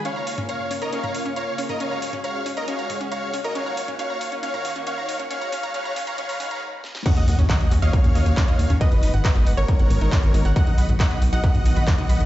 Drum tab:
CC |----------------|----------------|----------------|----------------|
HH |x-oxx-oxxxoxx-ox|x-oxx-oxxxoxx-ox|x-oxx-oxxxoxx-ox|xxoxxxoxxoox----|
CP |----------------|----------------|----------------|----------------|
SD |----------------|----------------|----------------|--------------oo|
T2 |---o-----o-----o|---o------o-----|---o-----o-----o|---o--o---o-----|
BD |----------------|----------------|----------------|----------------|

CC |x---------------|----------------|----------------|
HH |xxoxxxoxxxoxxxox|xxoxxxoxxxoxxxox|xxoxxxoxxxoxxxox|
CP |----x-------x---|----x-------x---|----x-------x---|
SD |----------------|----------------|----------------|
T2 |---o-----o-----o|---o------o-----|---o-----o-----o|
BD |o---o---o---o---|o---o---o---o---|o---o---o---o---|